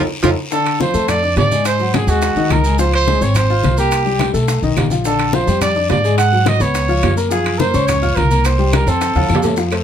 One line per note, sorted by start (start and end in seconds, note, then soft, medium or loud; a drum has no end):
0.22 0.34 F2 medium
0.22 0.29 F3 medium
0.22 0.33 D#4 medium
0.22 0.30 F4 medium
0.22 0.33 F4 medium
0.22 0.33 A4 medium
0.22 high bongo medium
0.22 high conga medium
0.22 high timbale medium
0.22 long guiro medium
0.22 claves medium
0.22 maracas medium
0.52 0.75 D3 medium
0.52 0.76 D4 medium
0.52 0.78 A4 medium
0.52 0.76 D5 medium
0.52 high bongo medium
0.52 high conga soft
0.52 long guiro medium
0.52 maracas medium
0.66 high bongo soft
0.66 high conga soft
0.66 high timbale medium
0.66 claves medium
0.66 maracas soft
0.80 0.92 F3 medium
0.80 0.92 F4 medium
0.80 1.10 C5 medium
0.80 0.92 F5 medium
0.80 high bongo medium
0.80 high conga medium
0.80 short guiro medium
0.80 maracas soft
0.94 1.34 F2 medium
0.94 1.17 A3 medium
0.94 1.18 A4 medium
0.94 1.18 A5 medium
0.94 high bongo soft
0.94 high conga soft
0.94 short guiro medium
0.94 maracas medium
1.08 1.37 D5 loud
1.08 high bongo medium
1.08 high conga soft
1.08 low conga medium
1.08 high timbale medium
1.08 long guiro medium
1.08 claves medium
1.08 maracas medium
1.23 1.46 D4 medium
1.23 1.46 D5 medium
1.23 1.46 D6 medium
1.23 high bongo soft
1.23 high conga soft
1.23 maracas soft
1.36 2.02 G#2 medium
1.36 1.64 D5 medium
1.36 high bongo soft
1.36 low bongo medium
1.36 high conga medium
1.36 high timbale medium
1.36 low timbale medium
1.36 short guiro medium
1.36 maracas soft
1.51 1.75 G#3 medium
1.51 1.75 G#4 medium
1.51 1.75 G#5 medium
1.51 high conga medium
1.51 short guiro medium
1.51 maracas medium
1.65 1.97 C5 medium
1.65 high bongo medium
1.65 high conga soft
1.65 high timbale medium
1.65 long guiro medium
1.65 claves medium
1.65 maracas medium
1.79 2.03 F#3 medium
1.79 2.03 F#4 medium
1.79 2.03 F#5 medium
1.79 high bongo soft
1.79 high conga soft
1.79 maracas soft
1.93 2.10 G#4 medium
1.93 high bongo medium
1.93 high conga medium
1.93 high timbale medium
1.93 short guiro medium
1.93 claves medium
1.93 maracas soft
2.07 2.34 D#2 medium
2.07 2.31 G#3 medium
2.07 2.53 F#4 medium
2.07 2.32 G#4 medium
2.07 2.32 G#5 medium
2.07 high bongo soft
2.07 high conga soft
2.07 short guiro medium
2.07 maracas medium
2.22 high bongo medium
2.22 high conga soft
2.22 high timbale medium
2.22 long guiro medium
2.22 maracas medium
2.36 2.49 D2 medium
2.36 2.60 D#3 medium
2.36 2.60 D#4 medium
2.36 2.60 D#5 medium
2.36 high bongo soft
2.36 high conga soft
2.36 maracas soft
2.50 3.16 C#2 medium
2.50 2.79 A#4 medium
2.50 high bongo soft
2.50 low bongo medium
2.50 high conga medium
2.50 high timbale medium
2.50 short guiro medium
2.50 claves medium
2.50 maracas soft
2.64 2.77 G#3 medium
2.64 2.77 G#4 medium
2.64 2.77 G#5 medium
2.64 short guiro medium
2.64 maracas medium
2.78 3.02 F3 medium
2.78 3.02 F4 medium
2.78 2.93 C5 medium
2.78 3.02 F5 medium
2.78 high bongo medium
2.78 long guiro medium
2.78 maracas medium
2.93 3.24 C5 loud
2.93 high bongo soft
2.93 high conga soft
2.93 high timbale medium
2.93 claves medium
2.93 maracas soft
3.07 3.19 G#3 medium
3.07 3.19 G#4 medium
3.07 3.19 G#5 medium
3.07 high bongo medium
3.07 high conga medium
3.07 short guiro medium
3.07 maracas soft
3.21 3.61 G#1 medium
3.21 3.44 C4 medium
3.21 3.45 C5 medium
3.21 3.36 C#5 medium
3.21 3.45 C6 medium
3.21 high bongo soft
3.21 high conga soft
3.21 short guiro medium
3.21 maracas medium
3.35 3.76 C5 medium
3.35 high bongo medium
3.35 high conga soft
3.35 low conga medium
3.35 high timbale medium
3.35 long guiro medium
3.35 claves medium
3.35 maracas medium
3.49 3.73 F4 medium
3.49 3.73 F5 medium
3.49 3.73 F6 medium
3.49 high bongo soft
3.49 high conga soft
3.49 maracas soft
3.63 4.29 C2 medium
3.63 high bongo soft
3.63 low bongo medium
3.63 high conga medium
3.63 high timbale medium
3.63 short guiro medium
3.63 maracas soft
3.77 4.01 A#3 medium
3.77 4.31 G4 medium
3.77 4.01 A#4 medium
3.77 4.01 A#5 medium
3.77 short guiro medium
3.77 maracas medium
3.91 high bongo medium
3.91 high conga soft
3.91 high timbale medium
3.91 long guiro medium
3.91 claves medium
3.91 maracas medium
4.06 4.29 G3 medium
4.06 4.29 G4 medium
4.06 4.30 G5 medium
4.06 high bongo soft
4.06 high conga soft
4.06 maracas soft
4.19 high bongo medium
4.19 high conga loud
4.19 high timbale medium
4.19 short guiro medium
4.19 claves medium
4.19 maracas soft
4.34 4.61 B1 medium
4.34 4.57 A3 medium
4.34 4.57 A4 medium
4.34 4.58 A5 medium
4.34 high bongo soft
4.34 high conga soft
4.34 short guiro medium
4.34 maracas medium
4.48 high bongo medium
4.48 high conga soft
4.48 high timbale medium
4.48 long guiro medium
4.48 maracas medium
4.62 4.76 B1 medium
4.62 4.86 D#3 medium
4.62 4.86 D#4 medium
4.62 4.86 D#5 medium
4.62 high bongo soft
4.62 high conga soft
4.62 maracas soft
4.77 5.42 A#1 medium
4.77 high bongo soft
4.77 low bongo medium
4.77 high conga medium
4.77 high timbale medium
4.77 low timbale medium
4.77 short guiro medium
4.77 claves medium
4.77 maracas soft
4.90 5.03 F3 medium
4.90 5.03 F4 medium
4.90 5.03 F5 medium
4.90 high conga medium
4.90 short guiro medium
4.90 maracas medium
5.05 5.29 D3 medium
5.05 5.29 D4 medium
5.05 5.36 A4 medium
5.05 5.29 D5 medium
5.05 high bongo medium
5.05 high conga soft
5.05 long guiro medium
5.05 maracas medium
5.19 high bongo soft
5.19 high conga soft
5.19 high timbale medium
5.19 claves medium
5.19 maracas soft
5.33 5.45 F3 medium
5.33 5.45 F4 medium
5.33 5.61 C5 medium
5.33 5.45 F5 medium
5.33 high bongo medium
5.33 high conga loud
5.33 short guiro medium
5.33 maracas soft
5.47 5.87 F2 medium
5.47 5.71 G3 medium
5.47 5.71 G4 medium
5.47 5.71 G5 medium
5.47 high bongo soft
5.47 high conga soft
5.47 short guiro medium
5.47 maracas medium
5.61 5.88 D5 medium
5.61 high bongo medium
5.61 high conga soft
5.61 low conga medium
5.61 high timbale medium
5.61 long guiro medium
5.61 claves medium
5.61 maracas medium
5.75 5.99 D4 medium
5.75 5.99 D5 medium
5.75 5.99 D6 medium
5.75 high bongo soft
5.75 high conga soft
5.75 maracas soft
5.89 6.55 G#2 medium
5.89 6.17 D5 medium
5.89 high bongo soft
5.89 low bongo medium
5.89 high conga medium
5.89 high timbale medium
5.89 low timbale medium
5.89 short guiro medium
5.89 maracas soft
6.04 6.27 G#3 medium
6.04 6.28 G#4 medium
6.04 6.28 G#5 medium
6.04 short guiro medium
6.04 maracas medium
6.18 6.50 F#5 loud
6.18 high bongo medium
6.18 high conga soft
6.18 high timbale medium
6.18 long guiro medium
6.18 claves medium
6.18 maracas medium
6.32 6.56 F#3 medium
6.32 6.56 F#4 medium
6.32 6.56 F#5 medium
6.32 high bongo soft
6.32 high conga soft
6.32 maracas soft
6.46 6.63 D#5 medium
6.46 high bongo medium
6.46 high conga medium
6.46 high timbale medium
6.46 short guiro medium
6.46 claves medium
6.46 maracas soft
6.60 7.00 C#2 medium
6.60 6.84 B3 medium
6.60 6.84 B4 medium
6.60 7.18 C#5 loud
6.60 6.84 B5 medium
6.60 high bongo soft
6.60 short guiro medium
6.60 maracas medium
6.74 high bongo medium
6.74 high conga soft
6.74 high timbale medium
6.74 long guiro medium
6.74 maracas medium
6.88 7.12 F3 medium
6.88 7.12 F4 medium
6.88 7.12 F5 medium
6.88 high bongo soft
6.88 high conga soft
6.88 maracas soft
7.03 7.69 F#2 medium
7.03 high bongo soft
7.03 low bongo medium
7.03 high conga medium
7.03 high timbale medium
7.03 low timbale medium
7.03 short guiro medium
7.03 claves medium
7.03 maracas soft
7.17 7.29 A#3 medium
7.17 7.29 A#4 medium
7.17 7.29 A#5 medium
7.17 short guiro medium
7.17 maracas medium
7.30 7.54 F3 medium
7.30 7.55 F4 medium
7.30 7.60 G#4 medium
7.30 7.55 F5 medium
7.30 high bongo medium
7.30 high conga soft
7.30 long guiro medium
7.30 maracas medium
7.46 high bongo soft
7.46 high conga soft
7.46 high timbale medium
7.46 claves medium
7.46 maracas soft
7.59 7.72 A#3 medium
7.59 7.72 A#4 medium
7.59 7.89 C5 medium
7.59 7.72 A#5 medium
7.59 high bongo medium
7.59 high conga loud
7.59 short guiro medium
7.59 maracas soft
7.74 8.14 C#2 loud
7.74 7.97 C#4 medium
7.74 7.97 C#5 medium
7.74 7.98 C#6 medium
7.74 high bongo soft
7.74 high conga soft
7.74 short guiro medium
7.74 maracas medium
7.87 8.17 C#5 medium
7.87 high bongo medium
7.87 high conga soft
7.87 low conga medium
7.87 high timbale medium
7.87 long guiro medium
7.87 claves medium
7.87 maracas medium
8.02 8.26 F4 medium
8.02 8.26 F5 medium
8.02 8.26 F6 medium
8.02 high bongo soft
8.02 high conga soft
8.02 low conga medium
8.02 maracas soft
8.16 8.82 C2 medium
8.16 8.47 A#4 medium
8.16 high bongo soft
8.16 low bongo medium
8.16 high conga medium
8.16 high timbale medium
8.16 short guiro medium
8.16 maracas soft
8.31 8.54 A#3 medium
8.31 8.54 A#4 medium
8.31 8.55 A#5 medium
8.31 high conga medium
8.31 short guiro medium
8.31 maracas medium
8.45 8.76 C5 medium
8.45 high bongo medium
8.45 high conga soft
8.45 high timbale medium
8.45 long guiro medium
8.45 claves medium
8.45 maracas medium
8.59 8.82 G3 medium
8.59 8.82 G4 medium
8.59 8.82 G5 medium
8.59 high bongo soft
8.59 high conga soft
8.59 maracas soft
8.73 8.90 A#4 medium
8.73 high bongo medium
8.73 high conga loud
8.73 high timbale medium
8.73 short guiro medium
8.73 claves medium
8.73 maracas soft
8.87 9.13 F2 medium
8.87 9.11 C4 medium
8.87 9.45 A4 medium
8.87 9.11 C5 medium
8.87 9.11 C6 medium
8.87 high bongo soft
8.87 high conga soft
8.87 short guiro medium
8.87 maracas medium
9.01 high bongo medium
9.01 high conga soft
9.01 high timbale medium
9.01 long guiro medium
9.01 maracas medium
9.15 9.29 D#2 medium
9.15 9.39 F3 medium
9.15 9.39 F4 medium
9.15 9.39 F5 medium
9.15 high bongo soft
9.15 high conga medium
9.15 high timbale medium
9.15 maracas soft
9.29 9.84 F2 medium
9.29 high bongo soft
9.29 low bongo medium
9.29 high conga medium
9.29 short guiro medium
9.29 claves medium
9.29 maracas soft
9.35 low timbale loud
9.42 9.55 A3 medium
9.42 9.55 A4 medium
9.42 9.55 A5 medium
9.42 low conga medium
9.42 low timbale medium
9.42 short guiro medium
9.42 maracas medium
9.56 9.69 F3 medium
9.56 9.69 F4 medium
9.56 9.69 F5 medium
9.56 high bongo medium
9.56 high conga soft
9.56 long guiro medium
9.56 maracas medium
9.71 9.84 A3 medium
9.71 9.84 A4 medium
9.71 9.84 C5 medium
9.71 high conga soft
9.71 high timbale medium
9.71 claves medium
9.71 maracas soft